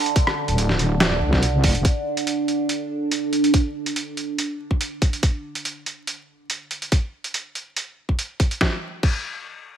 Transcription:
Already playing: D3 D4
0.06 closed hi-hat
0.16 kick, closed hi-hat
0.27 cross-stick
0.48 D1, closed hi-hat
0.58 closed hi-hat
0.69 snare
0.79 closed hi-hat
1.00 snare, closed hi-hat
1.21 C2
1.33 kick, snare
1.43 closed hi-hat
1.64 E1, kick, open hi-hat
1.75 closed hi-hat
1.85 kick, closed hi-hat
2.17 closed hi-hat
2.27 closed hi-hat
2.48 closed hi-hat
2.69 closed hi-hat
3.11 closed hi-hat
3.33 closed hi-hat
3.44 closed hi-hat
3.54 kick, closed hi-hat
3.86 closed hi-hat
3.96 closed hi-hat
4.17 closed hi-hat
4.38 closed hi-hat
4.71 kick
4.81 closed hi-hat
5.02 kick, closed hi-hat
5.13 closed hi-hat
5.23 kick, closed hi-hat
5.55 closed hi-hat
5.65 closed hi-hat
5.86 closed hi-hat
6.07 closed hi-hat
6.50 closed hi-hat
6.71 closed hi-hat
6.82 closed hi-hat
6.92 kick, closed hi-hat
7.24 closed hi-hat
7.34 closed hi-hat
7.55 closed hi-hat
7.77 closed hi-hat
8.09 kick
8.19 closed hi-hat
8.40 kick, closed hi-hat
8.51 closed hi-hat
8.61 kick, snare
9.03 kick, crash

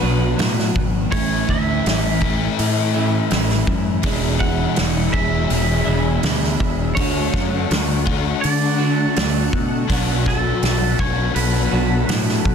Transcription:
Already playing: B2 F#3 B3 D4 F#4 B4
0.01 B1 B2 F#3 B3 D4 F#4
0.36 A2 B2 F#3 B3 D4 F#4, snare, open hi-hat
0.59 snare
0.76 G#1, kick
1.10 A1 A2 E3 A3 C#4 E4 C#5, kick, open hi-hat
1.49 D2 E5, kick
1.86 A1, snare, open hi-hat
2.21 A2 E3 A3 C#4 E4, kick
2.59 A2, open hi-hat
2.94 A2 E3 A3 C#4 E4
3.30 A1 A2 E3 A3 C#4 E4, snare, open hi-hat
3.50 snare
3.67 F#2, kick
4.02 E1 E2 B2 E3 G#3 D4 E4 G#4 E5 B5, kick, open hi-hat
4.40 F#5, kick
4.76 E1, snare, open hi-hat
5.13 E1 E2 B2 E3 G#3 D4 E4 E5, kick
5.50 E1, open hi-hat
5.85 E1 E2 B2 E3 G#3 D4 E4
6.22 D2 E2 B2 E3 G#3 D4 E4, snare, open hi-hat
6.44 snare
6.60 E1, kick
6.95 D2 D3 A3 D4 A4 C#5 F#5 C#6, kick, open hi-hat
6.99 D4 F#4
7.34 F#2, kick, snare
7.71 D2, snare, open hi-hat
8.06 D3 A3 D4 F#4, kick
8.41 D3 D5, open hi-hat
8.78 D3 A3 D4 F#4
9.15 D2 D3 A3 D4 F#4, snare, open hi-hat
9.53 B2, kick
9.88 B1 B2 F#3 B3 D4 F#4 B5, kick, open hi-hat
10.26 A4, kick, snare
10.63 B1, snare, open hi-hat
10.99 B1 B2 F#3 B3 D4 F#4 C#5, kick
11.35 B1 B4, open hi-hat
11.71 B1 B2 F#3 B3 D4 F#4
12.07 A2 B2 F#3 B3 D4 F#4, snare, open hi-hat
12.29 snare
12.45 B1, kick

